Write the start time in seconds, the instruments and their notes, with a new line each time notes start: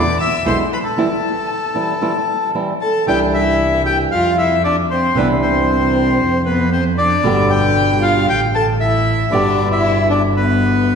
Already playing: double bass E2, bandoneon D5, violin D6
0.20 bandoneon E5, violin E6
0.45 double bass B1, nylon-string guitar B2 D3 G#3 B3 E4, bandoneon C5, violin C6
0.72 bandoneon B4, violin B5
0.84 bandoneon A4, violin A5
0.97 nylon-string guitar E3 G3 C4 E4
1.75 nylon-string guitar E3 G3 C4 E4
2.01 nylon-string guitar E3 G3 C4 E4
2.55 nylon-string guitar E3 G3 C4 E4
2.81 violin A4, bandoneon A5
3.06 double bass C2, nylon-string guitar C3 E3 G3 D4 E4, violin G4, bandoneon G5
3.33 violin E4, bandoneon E5
3.86 violin G4, bandoneon G5
4.12 double bass F2, violin F4, bandoneon F5
4.38 violin E4, bandoneon E5
4.64 violin D4, bandoneon D5
4.90 violin C4, bandoneon C5
5.15 double bass C2, nylon-string guitar C3 E3 G3 D4 E4, violin B3, bandoneon B4
5.42 violin C4, bandoneon C5
6.21 double bass F2
6.45 violin B3, bandoneon B4
6.73 violin C4, bandoneon C5
6.98 violin D4, bandoneon D5
7.23 double bass G1, nylon-string guitar B2 D3 G3 B3 G4
7.50 violin G4, bandoneon G5
8.01 violin F4, bandoneon F5
8.27 double bass A1, violin G4, bandoneon G5
8.54 violin A4, bandoneon A5
8.80 violin E4, bandoneon E5
9.30 double bass G1, nylon-string guitar B2 D3 G3 B3 G4, violin D4, bandoneon D5
9.72 violin E4, bandoneon E5
10.10 violin D4, bandoneon D5
10.36 violin B3, bandoneon B4